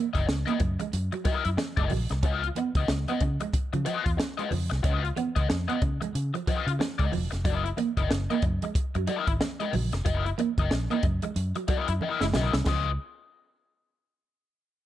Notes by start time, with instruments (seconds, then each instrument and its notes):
0.13 fingered electric bass F#1, overdriven electric guitar E4 A#4 D#5, kick, closed hi-hat, high conga
0.26 fingered electric bass C#2, muted overdriven electric guitar stroke, snare, muted conga
0.46 clean electric guitar A#3, overdriven electric guitar E4 A#4 D#5, closed hi-hat, muted conga, high conga
0.60 fingered electric bass F#2, muted overdriven electric guitar stroke, muted clean electric guitar stroke, kick, closed hi-hat, low conga
0.79 clean electric guitar G#3, muted overdriven electric guitar stroke, closed hi-hat, high conga
0.92 fingered electric bass F#2, muted clean electric guitar stroke, closed hi-hat, muted conga
1.12 clean electric guitar F#3, muted overdriven electric guitar stroke, closed hi-hat, muted conga
1.25 clean electric guitar F#3, overdriven electric guitar E4 A#4 D#5, muted fingered electric bass stroke, kick, closed hi-hat
1.45 fingered electric bass F#2, muted overdriven electric guitar stroke, closed hi-hat
1.57 muted overdriven electric guitar stroke, muted clean electric guitar stroke, snare, muted conga, high conga
1.77 fingered electric bass F#1, clean electric guitar G#3, overdriven electric guitar E4 A#4 D#5, kick, closed hi-hat
1.90 fingered electric bass A#1, clean electric guitar F#3, muted overdriven electric guitar stroke, open hi-hat, high conga, low conga
2.09 fingered electric bass C2, muted overdriven electric guitar stroke, snare, closed hi-hat
2.23 fingered electric bass C#2, clean electric guitar C#4, overdriven electric guitar F4 B4 D#5, kick, closed hi-hat
2.42 muted clean electric guitar stroke, muted overdriven electric guitar stroke, closed hi-hat, muted conga
2.55 clean electric guitar B3, muted overdriven electric guitar stroke, closed hi-hat, high conga
2.75 fingered electric bass C#2, overdriven electric guitar F4 B4 D#5, kick, closed hi-hat, high conga
2.88 fingered electric bass C#2, muted overdriven electric guitar stroke, snare, muted conga
3.07 clean electric guitar B3, overdriven electric guitar F4 B4 D#5, closed hi-hat, muted conga, high conga
3.21 fingered electric bass C#3, muted overdriven electric guitar stroke, muted clean electric guitar stroke, kick, closed hi-hat, low conga
3.40 clean electric guitar G#3, muted overdriven electric guitar stroke, closed hi-hat, high conga
3.52 muted fingered electric bass stroke, muted clean electric guitar stroke, kick, closed hi-hat, muted conga
3.73 fingered electric bass C#3, clean electric guitar F3, muted overdriven electric guitar stroke, closed hi-hat, muted conga
3.85 clean electric guitar F3, overdriven electric guitar F4 B4 D#5, closed hi-hat
4.05 fingered electric bass E2, muted overdriven electric guitar stroke, kick, closed hi-hat
4.17 muted overdriven electric guitar stroke, muted clean electric guitar stroke, snare, high conga
4.37 clean electric guitar G#3, overdriven electric guitar F4 B4 D#5, closed hi-hat, muted conga
4.51 fingered electric bass F2, clean electric guitar F3, muted overdriven electric guitar stroke, open hi-hat, high conga, low conga
4.70 fingered electric bass C2, muted overdriven electric guitar stroke, snare, closed hi-hat
4.83 fingered electric bass C#2, clean electric guitar C#4, overdriven electric guitar F4 B4 D#5, kick, closed hi-hat, muted conga
5.03 muted overdriven electric guitar stroke, muted clean electric guitar stroke, closed hi-hat
5.16 clean electric guitar B3, muted overdriven electric guitar stroke, closed hi-hat, high conga
5.36 fingered electric bass C#2, overdriven electric guitar F4 B4 D#5, kick, closed hi-hat, high conga
5.48 fingered electric bass F2, muted overdriven electric guitar stroke, snare, muted conga
5.68 clean electric guitar B3, overdriven electric guitar F4 B4 D#5, closed hi-hat, muted conga, high conga
5.81 fingered electric bass C#3, muted overdriven electric guitar stroke, muted clean electric guitar stroke, kick, closed hi-hat, low conga
6.01 clean electric guitar G#3, muted overdriven electric guitar stroke, closed hi-hat, high conga
6.14 fingered electric bass C#3, muted clean electric guitar stroke, closed hi-hat, muted conga
6.34 clean electric guitar F3, muted overdriven electric guitar stroke, closed hi-hat, muted conga
6.47 clean electric guitar F3, overdriven electric guitar F4 B4 D#5, muted fingered electric bass stroke, kick, closed hi-hat
6.67 fingered electric bass C#3, muted overdriven electric guitar stroke, closed hi-hat
6.79 muted overdriven electric guitar stroke, muted clean electric guitar stroke, snare, high conga
6.98 fingered electric bass C#2, clean electric guitar G#3, overdriven electric guitar F4 B4 D#5, kick, closed hi-hat, muted conga
7.12 fingered electric bass E1, clean electric guitar F3, muted overdriven electric guitar stroke, open hi-hat, high conga, low conga
7.31 fingered electric bass F1, muted overdriven electric guitar stroke, snare, closed hi-hat
7.45 fingered electric bass F#1, clean electric guitar F#3, overdriven electric guitar E4 A#4 D#5, kick, closed hi-hat, muted conga
7.64 muted clean electric guitar stroke, muted overdriven electric guitar stroke, closed hi-hat, muted conga
7.77 clean electric guitar A#3, muted overdriven electric guitar stroke, closed hi-hat, high conga
7.97 fingered electric bass F#1, overdriven electric guitar E4 A#4 D#5, kick, closed hi-hat, high conga
8.11 fingered electric bass F#1, muted overdriven electric guitar stroke, snare
8.30 clean electric guitar A#3, overdriven electric guitar E4 A#4 D#5, closed hi-hat, muted conga, high conga
8.42 fingered electric bass F#2, muted overdriven electric guitar stroke, muted clean electric guitar stroke, kick, closed hi-hat, low conga
8.62 clean electric guitar G#3, muted overdriven electric guitar stroke, closed hi-hat, high conga
8.75 muted fingered electric bass stroke, muted clean electric guitar stroke, kick, closed hi-hat, muted conga
8.95 fingered electric bass F#2, clean electric guitar F#3, muted overdriven electric guitar stroke, closed hi-hat, muted conga
9.07 clean electric guitar F#3, overdriven electric guitar E4 A#4 D#5, closed hi-hat
9.27 fingered electric bass G#1, muted overdriven electric guitar stroke, kick, closed hi-hat
9.40 muted clean electric guitar stroke, muted overdriven electric guitar stroke, snare, muted conga, high conga
9.60 clean electric guitar G#3, overdriven electric guitar E4 A#4 D#5, closed hi-hat, muted conga
9.73 fingered electric bass A#1, clean electric guitar F#3, muted overdriven electric guitar stroke, open hi-hat, high conga, low conga
9.92 fingered electric bass F1, muted overdriven electric guitar stroke, snare, closed hi-hat
10.05 fingered electric bass F#1, clean electric guitar F#3, overdriven electric guitar E4 A#4 D#5, kick, closed hi-hat, muted conga
10.24 muted clean electric guitar stroke, muted overdriven electric guitar stroke, closed hi-hat, muted conga
10.38 clean electric guitar A#3, muted overdriven electric guitar stroke, closed hi-hat, high conga
10.58 fingered electric bass F#1, overdriven electric guitar E4 A#4 D#5, kick, closed hi-hat, high conga
10.71 fingered electric bass A#1, muted overdriven electric guitar stroke, snare, muted conga
10.90 clean electric guitar A#3, overdriven electric guitar E4 A#4 D#5, closed hi-hat, muted conga, high conga
11.03 fingered electric bass F#2, muted clean electric guitar stroke, muted overdriven electric guitar stroke, kick, closed hi-hat, low conga
11.22 clean electric guitar G#3, muted overdriven electric guitar stroke, closed hi-hat, high conga
11.35 fingered electric bass F#2, muted clean electric guitar stroke, closed hi-hat, muted conga
11.55 clean electric guitar F#3, muted overdriven electric guitar stroke, closed hi-hat, muted conga
11.68 clean electric guitar F#3, overdriven electric guitar E4 A#4 D#5, muted fingered electric bass stroke, kick, closed hi-hat
11.88 fingered electric bass F#2, muted overdriven electric guitar stroke, closed hi-hat
12.01 overdriven electric guitar E4 A#4 D#5, muted clean electric guitar stroke, muted conga, high conga
12.20 fingered electric bass F#1, clean electric guitar G#3, muted overdriven electric guitar stroke, snare, muted conga
12.33 fingered electric bass B1, clean electric guitar F#3, overdriven electric guitar E4 A#4, snare, high conga, low conga
12.37 overdriven electric guitar D#5
12.53 fingered electric bass C2, muted overdriven electric guitar stroke, snare
12.66 fingered electric bass C#2, clean electric guitar F3, overdriven electric guitar F4 B4 D#5, kick, snare, crash, high conga